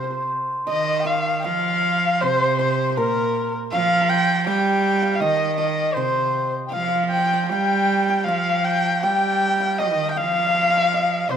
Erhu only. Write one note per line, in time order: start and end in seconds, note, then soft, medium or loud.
0.00 0.30 C5 medium
0.68 1.08 D#5 medium
1.07 1.44 F5 medium
1.45 2.22 F5 medium
2.21 2.58 C5 medium
2.58 2.92 C5 medium
2.92 2.99 C5 medium
2.97 3.53 A#4 medium
3.72 4.11 F5 loud
4.09 4.46 G5 loud
4.47 5.17 G5 medium
5.15 5.21 F5 medium
5.20 5.56 D#5 medium
5.56 5.96 D#5 medium
5.94 6.53 C5 medium
6.71 7.08 F5 medium
7.10 7.47 G5 medium
7.49 8.26 G5 medium
8.24 8.66 F5 loud
8.64 9.02 G5 loud
9.02 9.80 G5 loud
9.79 10.10 D#5 medium
10.10 10.19 G5 medium
10.18 11.32 F5 loud
11.30 11.37 C5 medium